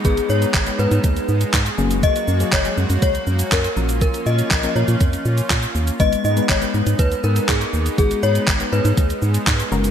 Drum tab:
HH |xx-xxx-xxx-xxx-x|xx-xxx-xxx-xxx-x|xx-xxx-xxx-xxx-x|xx-xxx-xxx-xxx-x|
SH |xxxxxxxxxxxxxxxx|xxxxxxxxxxxxxxxx|xxxxxxxxxxxxxxxx|xxxxxxxxxxxxxxxx|
CP |----x-------x---|----x-------x---|----x-------x---|----x-------x---|
BD |o---o---o---o---|o---o---o---o---|o---o---o---o---|o---o---o---o---|

HH |xx-xxx-xxx-xxx-x|
SH |xxxxxxxxxxxxxxxx|
CP |----x-------x---|
BD |o---o---o---o---|